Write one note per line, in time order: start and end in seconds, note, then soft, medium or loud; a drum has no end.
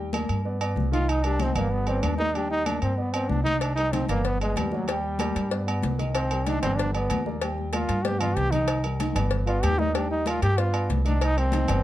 0.00 0.23 D#2 medium
0.13 0.39 A#3 medium
0.13 0.39 A#4 medium
0.13 0.39 D5 medium
0.13 high conga medium
0.13 low agogo loud
0.29 0.73 G2 loud
0.29 high conga soft
0.29 low agogo medium
0.45 0.58 B3 medium
0.45 0.58 B4 medium
0.45 0.58 D5 medium
0.45 high conga soft
0.60 0.86 B3 medium
0.60 0.87 B4 medium
0.60 0.87 D5 medium
0.60 high conga soft
0.60 low agogo loud
0.76 1.50 C2 medium
0.76 high conga medium
0.91 1.18 D#3 medium
0.91 1.18 D#4 medium
0.91 1.11 F4 medium
0.91 1.18 D#5 medium
0.91 high conga medium
0.91 low agogo medium
1.08 1.26 D#4 medium
1.08 high conga soft
1.08 low agogo loud
1.24 1.37 G3 medium
1.24 1.43 D4 loud
1.24 1.37 G4 medium
1.24 1.37 A#4 medium
1.24 high conga soft
1.24 low agogo medium
1.39 1.52 D#3 medium
1.39 1.58 C4 medium
1.39 1.53 D#4 medium
1.39 1.53 D#5 medium
1.39 high conga loud
1.39 low agogo medium
1.55 1.99 G1 medium
1.55 1.73 A#3 medium
1.55 1.81 B3 medium
1.55 1.82 B4 medium
1.55 1.82 D5 medium
1.55 high conga soft
1.55 low conga medium
1.55 low agogo loud
1.71 1.90 B3 medium
1.71 high conga soft
1.87 2.13 B3 medium
1.87 2.05 C4 medium
1.87 2.13 B4 medium
1.87 2.13 D5 medium
1.87 high conga soft
1.87 low agogo medium
2.03 2.76 D#2 medium
2.03 2.17 D4 medium
2.03 high conga medium
2.03 low timbale medium
2.03 low agogo loud
2.18 2.32 A#3 medium
2.18 2.37 D#4 loud
2.18 2.32 A#4 medium
2.18 2.32 D5 medium
2.18 high conga medium
2.34 2.60 G3 medium
2.34 2.50 D4 medium
2.34 2.61 G4 medium
2.34 2.61 G5 medium
2.34 high conga soft
2.34 low agogo medium
2.50 2.68 D#4 loud
2.50 high conga soft
2.66 2.92 A#3 medium
2.66 2.81 D4 medium
2.66 2.92 A#4 medium
2.66 2.92 D5 medium
2.66 high conga loud
2.66 low agogo loud
2.82 3.26 G2 medium
2.82 3.00 C4 medium
2.82 high conga soft
2.82 low agogo medium
2.97 3.10 B3 medium
2.97 3.15 B3 medium
2.97 3.11 B4 medium
2.97 3.11 D5 medium
2.97 high conga soft
3.13 3.40 B3 medium
3.13 3.30 C4 medium
3.13 3.40 B4 medium
3.13 3.40 D5 medium
3.13 high conga soft
3.13 low agogo loud
3.28 4.03 C2 medium
3.28 3.43 D4 medium
3.28 high conga medium
3.44 3.71 D#3 medium
3.44 3.62 D#4 loud
3.44 3.71 D#4 medium
3.44 3.71 D#5 medium
3.44 high conga medium
3.44 low agogo medium
3.61 3.75 D4 medium
3.61 cowbell loud
3.61 high conga soft
3.61 low agogo loud
3.75 3.90 G3 medium
3.75 3.94 D#4 loud
3.75 3.91 G4 medium
3.75 3.91 A#4 medium
3.75 high conga soft
3.75 low agogo medium
3.92 4.06 D#3 medium
3.92 4.08 C4 medium
3.92 4.06 D#4 medium
3.92 4.06 D#5 medium
3.92 cowbell medium
3.92 high conga loud
3.92 low agogo medium
4.08 4.53 G1 medium
4.08 4.26 A#3 medium
4.08 4.35 B3 medium
4.08 4.35 B4 medium
4.08 4.35 D5 medium
4.08 cowbell medium
4.08 high conga soft
4.08 low conga medium
4.08 low agogo loud
4.24 4.40 B3 medium
4.24 cowbell loud
4.24 high conga soft
4.24 low conga medium
4.40 4.58 G#3 medium
4.40 4.67 B3 medium
4.40 4.67 B4 medium
4.40 4.67 D5 medium
4.40 high conga soft
4.40 low agogo loud
4.56 5.30 D#2 medium
4.56 4.74 G3 medium
4.56 cowbell medium
4.56 high conga medium
4.56 low timbale medium
4.56 low agogo loud
4.71 4.90 F#3 medium
4.71 4.85 A#3 medium
4.71 4.85 A#4 medium
4.71 4.85 D5 medium
4.71 high conga medium
4.88 5.14 G3 medium
4.88 5.83 G3 medium
4.88 5.14 G4 medium
4.88 5.14 G5 medium
4.88 cowbell loud
4.88 high conga soft
4.88 low agogo medium
5.03 high conga soft
5.19 5.45 A#3 medium
5.19 5.46 A#4 medium
5.19 5.46 D5 medium
5.19 cowbell medium
5.19 high conga loud
5.19 low agogo loud
5.35 5.80 G2 medium
5.35 cowbell medium
5.35 high conga soft
5.35 low agogo medium
5.50 5.64 B3 medium
5.50 5.64 B4 medium
5.50 5.64 D5 medium
5.50 cowbell loud
5.50 high conga soft
5.67 5.93 B3 medium
5.67 5.93 B4 medium
5.67 5.93 D5 medium
5.67 high conga soft
5.67 low agogo loud
5.83 6.57 C2 medium
5.83 cowbell medium
5.83 high conga medium
5.98 6.24 D#3 medium
5.98 6.25 D#4 medium
5.98 6.25 D#5 medium
5.98 low agogo medium
6.15 6.48 C4 medium
6.15 cowbell loud
6.15 high conga soft
6.15 low agogo loud
6.31 6.44 G3 medium
6.31 6.44 G4 medium
6.31 6.44 A#4 medium
6.31 high conga soft
6.31 low agogo loud
6.46 6.59 D#3 medium
6.46 6.62 D4 medium
6.46 6.60 D#4 medium
6.46 6.60 D#5 medium
6.46 cowbell medium
6.46 high conga loud
6.46 low agogo medium
6.62 7.07 G1 medium
6.62 6.88 B3 medium
6.62 6.78 C4 loud
6.62 6.88 B4 medium
6.62 6.89 D5 medium
6.62 cowbell medium
6.62 high conga soft
6.62 low conga medium
6.62 low agogo loud
6.76 6.93 D4 loud
6.76 cowbell loud
6.76 high conga soft
6.76 low conga medium
6.93 7.23 B3 medium
6.93 7.20 B3 medium
6.93 7.20 B4 medium
6.93 7.20 D5 medium
6.93 high conga soft
6.93 low agogo medium
7.10 7.84 D#2 medium
7.10 cowbell medium
7.10 high conga medium
7.10 low agogo loud
7.26 7.39 A#3 medium
7.26 7.39 A#4 medium
7.26 7.39 D5 medium
7.26 high conga medium
7.42 7.67 G3 medium
7.42 7.67 G4 medium
7.42 7.68 G5 medium
7.42 cowbell loud
7.42 high conga soft
7.42 low agogo medium
7.58 high conga soft
7.72 7.98 A#3 medium
7.72 8.06 F4 medium
7.72 7.99 A#4 medium
7.72 7.99 D5 medium
7.72 cowbell medium
7.72 high conga medium
7.72 low agogo loud
7.89 8.33 G2 medium
7.89 cowbell medium
7.89 low agogo medium
8.04 8.17 B3 medium
8.04 8.21 G4 loud
8.04 8.18 B4 medium
8.04 8.18 D5 medium
8.04 cowbell loud
8.04 high conga medium
8.19 8.46 B3 medium
8.19 8.37 F4 loud
8.19 8.47 B4 medium
8.19 8.47 D5 medium
8.19 low conga medium
8.19 low agogo loud
8.36 9.10 C2 medium
8.36 8.52 G4 loud
8.36 cowbell medium
8.36 low conga medium
8.51 8.78 D#3 medium
8.51 8.83 D#4 medium
8.51 8.78 D#4 medium
8.51 8.78 D#5 medium
8.51 low conga loud
8.51 low agogo medium
8.68 cowbell loud
8.68 low agogo loud
8.84 8.97 G3 medium
8.84 8.97 G4 medium
8.84 8.97 A#4 medium
8.84 high conga soft
8.84 low agogo loud
9.00 9.13 D#3 medium
9.00 9.13 D#4 medium
9.00 9.13 D#5 medium
9.00 cowbell medium
9.00 high conga medium
9.00 low agogo medium
9.15 9.60 G1 loud
9.15 9.41 B3 medium
9.15 9.41 B4 medium
9.15 9.41 D5 medium
9.15 cowbell medium
9.15 high conga soft
9.15 low conga medium
9.15 low agogo loud
9.31 cowbell loud
9.31 high conga soft
9.31 low conga medium
9.46 9.73 B3 medium
9.46 9.64 F4 medium
9.46 9.73 B4 medium
9.46 9.73 D5 medium
9.46 high conga soft
9.46 low agogo medium
9.63 10.37 D#2 medium
9.63 9.80 G4 loud
9.63 cowbell medium
9.63 high conga medium
9.63 low agogo loud
9.78 9.91 A#3 medium
9.78 9.97 D#4 loud
9.78 9.92 A#4 medium
9.78 9.92 D5 medium
9.78 high conga medium
9.94 10.20 G3 medium
9.94 10.10 D4 medium
9.94 10.20 G4 medium
9.94 10.20 G5 medium
9.94 cowbell loud
9.94 high conga soft
9.94 low agogo medium
10.11 10.29 D#4 medium
10.11 high conga soft
10.26 10.52 A#3 medium
10.26 10.42 F4 medium
10.26 10.52 A#4 medium
10.26 10.52 D5 medium
10.26 cowbell medium
10.26 high conga loud
10.26 low agogo loud
10.42 10.86 G2 medium
10.42 10.60 G4 loud
10.42 cowbell medium
10.42 high conga soft
10.42 low agogo medium
10.57 10.70 B3 medium
10.57 10.90 F4 medium
10.57 10.70 B4 medium
10.57 10.71 D5 medium
10.57 cowbell loud
10.57 high conga soft
10.72 10.99 B3 medium
10.72 10.99 B4 medium
10.72 10.99 D5 medium
10.72 high conga soft
10.72 low agogo loud
10.89 11.63 C2 loud
10.89 cowbell medium
10.89 high conga medium
11.05 11.31 D#3 medium
11.05 11.25 D4 medium
11.05 11.31 D#4 medium
11.05 11.31 D#5 medium
11.05 high conga medium
11.05 low agogo medium
11.21 11.39 D#4 loud
11.21 cowbell loud
11.21 high conga soft
11.21 low agogo loud
11.36 11.49 G3 medium
11.36 11.83 C4 loud
11.36 11.50 G4 medium
11.36 11.50 A#4 medium
11.36 high conga soft
11.36 low agogo medium
11.52 11.65 D#3 medium
11.52 11.65 D#4 medium
11.52 11.66 D#5 medium
11.52 cowbell medium
11.52 high conga loud
11.52 low agogo medium
11.68 11.83 G1 loud
11.68 11.83 B3 medium
11.68 11.83 B4 medium
11.68 11.83 D5 medium
11.68 cowbell medium
11.68 high conga soft
11.68 low conga medium
11.68 low agogo loud